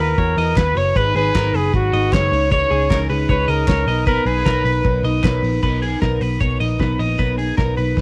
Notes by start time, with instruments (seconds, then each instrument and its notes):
0.00 picked electric bass D#2, steel-string acoustic guitar B3 E4 F#4, trumpet A#4, clean electric guitar B4
0.17 picked electric bass E2, steel-string acoustic guitar E3 B3 E4 F#4, clean electric guitar C#5, kick, closed hi-hat
0.36 picked electric bass E2, steel-string acoustic guitar B3 E4 F#4, clean electric guitar D#5, open hi-hat
0.56 picked electric bass D#2, steel-string acoustic guitar E3 B3 E4 F#4, trumpet B4, clean electric guitar B4, kick, snare, clap, closed hi-hat
0.75 picked electric bass F#1, steel-string acoustic guitar B3 E4 F#4, clean electric guitar C#5, trumpet C#5, open hi-hat
0.95 picked electric bass G#1, steel-string acoustic guitar G#2 D#3 F#3 B3 D#4 G#4, clean electric guitar B4, trumpet B4, kick, closed hi-hat
1.14 picked electric bass G#1, steel-string acoustic guitar F#3 B3 D#4 G#4, clean electric guitar G#4, trumpet B4, open hi-hat
1.34 picked electric bass G#1, steel-string acoustic guitar G#2 D#3 F#3 B3 D#4 G#4, clean electric guitar A#4, kick, snare, clap, closed hi-hat
1.54 picked electric bass F#1, steel-string acoustic guitar F#3 B3 D#4 G#4, trumpet G#4, clean electric guitar B4, open hi-hat
1.72 picked electric bass G#1, steel-string acoustic guitar F#3 B3 D#4 G#4, trumpet F#4, kick, closed hi-hat
1.92 picked electric bass G#1, steel-string acoustic guitar F#3 B3 D#4 G#4, clean electric guitar D#5, open hi-hat
2.12 picked electric bass F#1, steel-string acoustic guitar G#2 D#3 F#3 B3 D#4 G#4, clean electric guitar C#5, trumpet C#5, kick, snare, clap, closed hi-hat
2.31 picked electric bass C#2, steel-string acoustic guitar C#4 D#4 G#4, open hi-hat
2.50 steel-string acoustic guitar C#3 E3 C#4 D#4 G#4, clean electric guitar C#5, trumpet C#5, kick, closed hi-hat
2.69 picked electric bass C#2, steel-string acoustic guitar C#4 D#4 G#4, clean electric guitar G#4, open hi-hat
2.89 picked electric bass C#2, steel-string acoustic guitar C#3 E3 C#4 D#4 G#4, clean electric guitar A#4, kick, snare, clap, closed hi-hat
3.09 picked electric bass C#2, steel-string acoustic guitar C#4 D#4 G#4, clean electric guitar B4, open hi-hat
3.29 picked electric bass C#2, steel-string acoustic guitar E3 C#4 D#4 G#4, trumpet B4, clean electric guitar C#5, kick, closed hi-hat
3.48 picked electric bass C#2, steel-string acoustic guitar C#4 D#4 G#4, trumpet A#4, clean electric guitar D#5, open hi-hat
3.67 picked electric bass C#2, steel-string acoustic guitar C#3 E3 C#4 D#4 G#4, clean electric guitar C#5, kick, snare, clap, closed hi-hat
3.86 picked electric bass B1, steel-string acoustic guitar B3 D#4 A#4, clean electric guitar D#5, open hi-hat
4.06 steel-string acoustic guitar B2 F#3 B3 D#4 A#4, trumpet A#4, clean electric guitar B4, kick, closed hi-hat
4.25 picked electric bass B1, steel-string acoustic guitar D#4 A#4, clean electric guitar G#4, trumpet B4, open hi-hat
4.44 picked electric bass B1, steel-string acoustic guitar B2 F#3 B3 D#4 A#4, clean electric guitar A#4, kick, snare, clap, closed hi-hat
4.64 picked electric bass B1, steel-string acoustic guitar B3 D#4 A#4, clean electric guitar B4, open hi-hat
4.83 picked electric bass B1, steel-string acoustic guitar F#3 B3 D#4 A#4, kick, closed hi-hat
5.03 picked electric bass B1, steel-string acoustic guitar B3 D#4 A#4, clean electric guitar D#5, open hi-hat
5.23 picked electric bass B1, steel-string acoustic guitar B2 F#3 B3 D#4 A#4, clean electric guitar B4, kick, snare, clap, closed hi-hat
5.42 picked electric bass A#1, steel-string acoustic guitar B3 D#4 A#4, open hi-hat
5.62 picked electric bass B1, steel-string acoustic guitar B2 F#3 B3 D#4 A#4, clean electric guitar B4, kick, crash
5.82 steel-string acoustic guitar B3 D#4 A#4, clean electric guitar G#4, open hi-hat
6.01 picked electric bass B1, steel-string acoustic guitar B2 F#3 B3 D#4 A#4, clean electric guitar A#4, kick, snare, closed hi-hat
6.20 picked electric bass B1, steel-string acoustic guitar B3 D#4 A#4, clean electric guitar B4, open hi-hat
6.40 picked electric bass B1, steel-string acoustic guitar F#3 B3 D#4 A#4, clean electric guitar C#5, kick, closed hi-hat
6.59 picked electric bass A#1, steel-string acoustic guitar B3 D#4 A#4, clean electric guitar D#5, open hi-hat
6.78 picked electric bass B1, steel-string acoustic guitar B2 F#3 B3 D#4 A#4, clean electric guitar B4, kick, snare, closed hi-hat
6.98 picked electric bass A#1, steel-string acoustic guitar B3 D#4 A#4, clean electric guitar D#5, open hi-hat
7.18 picked electric bass B1, steel-string acoustic guitar B2 F#3 B3 D#4 A#4, clean electric guitar B4, kick, closed hi-hat
7.37 steel-string acoustic guitar B3 D#4 A#4, clean electric guitar G#4, open hi-hat
7.57 picked electric bass B1, steel-string acoustic guitar B2 F#3 B3 D#4 A#4, clean electric guitar A#4, kick, snare, closed hi-hat
7.76 picked electric bass B1, steel-string acoustic guitar B3 D#4 A#4, clean electric guitar B4, open hi-hat
7.96 picked electric bass B1, steel-string acoustic guitar F#3 B3 D#4 A#4, kick, snare